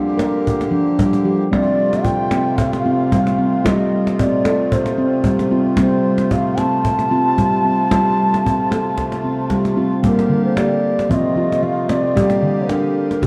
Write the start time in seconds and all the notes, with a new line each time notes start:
Already playing: D3 A#3 D4 G4
0.18 A#4, cajon slap
0.47 cajon bass
0.61 cajon slap
0.71 F3 D4
0.99 G3, cajon bass
1.13 cajon slap
1.25 F3 G4
1.51 C3 G3 A3 C4 F4 D5, cajon bass, cajon slap
1.93 cajon slap
2.04 F4 G5, cajon bass
2.31 C4, cajon slap
2.58 F5, cajon bass
2.73 cajon slap
2.85 C4 F4, cajon slap
3.01 cajon slap
3.12 G3, cajon bass
3.27 cajon slap
3.38 C4
3.54 cajon slap
3.64 G3 F4 D#5, cajon bass, cajon slap
4.07 cajon slap
4.19 C4 D5, cajon bass
4.45 A4, cajon slap
4.72 C5, cajon bass
4.86 cajon slap
4.98 C4, cajon slap
5.14 cajon slap
5.24 G3, cajon bass
5.39 cajon slap
5.52 C4 F4
5.66 cajon slap
5.77 G3 C4 C5, cajon bass, cajon slap
6.18 cajon slap
6.31 F4 F5, cajon bass
6.58 C4 A5, cajon slap
6.85 cajon bass
6.99 cajon slap
7.11 C4 F4, cajon slap
7.38 G3, cajon bass
7.65 C4
7.80 cajon slap
7.91 G3 F4, cajon bass, cajon slap
8.19 cajon slap
8.34 cajon slap
8.45 C4, cajon bass
8.71 A4, cajon slap
8.86 cajon slap
8.97 cajon bass, cajon slap
9.12 cajon slap
9.24 C4
9.50 G3, cajon bass, cajon slap
9.65 cajon slap
9.77 C4 F4
10.02 D3 G3 A#3 G4 C5, cajon bass
10.08 A#4
10.19 cajon slap
10.29 D3, cajon slap
10.44 C5
10.56 G4 D5, cajon slap
10.73 cajon slap
10.99 cajon slap
11.09 C3 F3 A3 C4 F4 F5, cajon bass
11.14 D#5
11.36 F3 F4
11.52 cajon slap
11.62 F3 F5
11.89 C4 D5, cajon slap
12.15 D3 G3 A#3 G4, cajon bass
12.30 cajon slap
12.42 D3, cajon slap
12.69 D4 A#4, cajon slap
13.11 cajon slap
13.21 C3 D#3 C4 G4, cajon bass